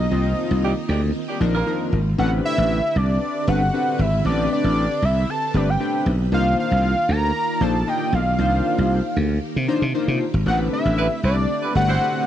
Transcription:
Already playing: string machine D#3 A#3 F4, analog synth lead D#5
0.11 slap bass C2, analog polysynth F3 C4 D#4 F4, string machine C4
0.51 slap bass C2
0.63 horn section D#3 G3 D4 G4
0.89 slap bass D2, horn section D#3 G3 D4 G4
1.28 horn section D#3 G3 D4 G4
1.40 slap bass A#1, analog polysynth F3 D4 D#4 A#4
1.54 horn section G3 A#3 F4 A#4
1.66 analog polysynth F3 D4 D#4 A#4
1.92 slap bass G#1
2.18 slap bass A1, string machine D3 C4 G4 B4, analog polysynth A3 C4 D4 G4 B4, analog synth lead F#5
2.45 analog synth lead E5
2.58 slap bass A1
2.96 slap bass C2, analog synth lead D5
3.47 slap bass G1, analog polysynth A3 C4 D4 G4 B4, analog synth lead F#5
3.73 analog polysynth A3 C4 D4 G4 B4
3.99 slap bass G#1, analog synth lead E5
4.25 slap bass A1, analog polysynth A3 C4 D4 G4 B4, analog synth lead D5
4.53 analog synth lead D5
4.64 slap bass A1
5.02 slap bass C2, analog synth lead E5
5.30 analog synth lead A5
5.54 slap bass G1, analog polysynth A3 C4 D4 G4 B4, analog synth lead D5
5.70 analog synth lead G5
5.80 analog polysynth A3 C4 D4 G4 B4
6.06 slap bass B1
6.31 slap bass C2, string machine D#3 A#3 F4 D5, analog polysynth A#3 D4 D#4 F4 C5, analog synth lead F5
6.60 analog synth lead F5
6.71 slap bass C2
7.09 slap bass D2, analog synth lead A#5
7.61 slap bass A#1, analog polysynth A#3 D4 D#4 F4 C5, analog synth lead A5
7.87 analog polysynth A#3 D4 D#4 F4 D#5, analog synth lead G5
8.13 slap bass B1, analog synth lead F5
8.38 slap bass C2, analog polysynth A#3 D4 D#4 F4 C5, string machine G4
8.78 slap bass C2
9.16 slap bass D2
9.56 slap bass C3
9.68 analog polysynth A#3 D4 D#4 F4 C5
9.82 slap bass C3
9.94 analog polysynth A#3 D4 D#4 F4 C5
10.08 slap bass C3
10.34 slap bass G#1
10.46 slap bass A1, string machine D3 A3 C4, analog polysynth A3 C4 D4 G4 A#4, analog synth lead F#5
10.53 analog polysynth B4
10.73 analog synth lead E5
10.85 slap bass A1
10.97 horn section G3 B3 E4 B4
11.23 slap bass C2, horn section G3 B3 E4 B4, analog synth lead D5
11.63 horn section G3 B3 E4 B4
11.75 slap bass G1, analog polysynth A3 C4 D4 G4 B4, analog synth lead F#5
11.88 horn section G3 C4 E4 C5
12.01 analog polysynth A3 C4 D4 G4 B4

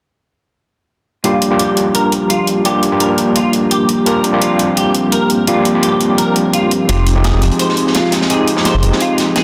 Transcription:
1.24 analog synth pad F3 A#3 D4 G4, tine electric piano G3 A#3 D4 F4 G4, clean electric guitar F4, closed hi-hat
1.42 closed hi-hat
1.51 tine electric piano G3 A#3 D4 F4 G4
1.59 clean electric guitar G4, closed hi-hat
1.77 closed hi-hat
1.95 clean electric guitar A#4, closed hi-hat
2.12 closed hi-hat
2.30 clean electric guitar F4, closed hi-hat
2.47 closed hi-hat
2.65 tine electric piano G3 A#3 D4 F4 G4, clean electric guitar G4, closed hi-hat
2.83 closed hi-hat
2.91 tine electric piano G3 A#3 D4 F4 G4
3.00 clean electric guitar A#4, closed hi-hat
3.18 closed hi-hat
3.36 clean electric guitar F4, closed hi-hat
3.53 closed hi-hat
3.71 clean electric guitar G4, closed hi-hat
3.89 closed hi-hat
4.06 tine electric piano G3 A#3 D4 F4 G4, analog synth pad C4, clean electric guitar A#4, closed hi-hat
4.24 closed hi-hat
4.33 tine electric piano G3 A#3 D4 F4 G4
4.42 clean electric guitar F4, closed hi-hat
4.59 closed hi-hat
4.77 clean electric guitar G4, closed hi-hat
4.95 closed hi-hat
5.12 clean electric guitar A#4, closed hi-hat
5.30 closed hi-hat
5.47 tine electric piano G3 A#3 D4 F4 G4, clean electric guitar F4, closed hi-hat
5.65 closed hi-hat
5.74 tine electric piano G3 A#3 D4 F4 G4
5.83 clean electric guitar G4, closed hi-hat
6.01 closed hi-hat
6.18 clean electric guitar A#4, closed hi-hat
6.36 closed hi-hat
6.53 clean electric guitar F4, closed hi-hat
6.71 closed hi-hat
6.88 sub bass F1, tine electric piano G#3 C4 D#4 F4 G4, analog synth pad D#4 G#4, clean electric guitar F4, closed hi-hat
7.07 closed hi-hat
7.15 tine electric piano G#3 C4 D#4 F4 G4
7.24 clean electric guitar G#4, snare, closed hi-hat
7.33 sub bass F1
7.42 sub bass F1, closed hi-hat
7.51 closed hi-hat
7.59 clean electric guitar C5, closed hi-hat
7.69 snare
7.77 closed hi-hat
7.87 snare
7.95 clean electric guitar F4, snare, closed hi-hat
8.12 snare, closed hi-hat
8.21 snare
8.30 tine electric piano G#3 C4 D#4 F4 G4, clean electric guitar G#4, closed hi-hat
8.48 closed hi-hat
8.56 tine electric piano G#3 C4 D#4 F4 G4, snare
8.65 clean electric guitar C5, snare, closed hi-hat
8.74 sub bass F1
8.83 sub bass F1, closed hi-hat
8.92 snare
9.00 clean electric guitar F4, closed hi-hat
9.18 snare, closed hi-hat
9.36 clean electric guitar G#4, snare, closed hi-hat

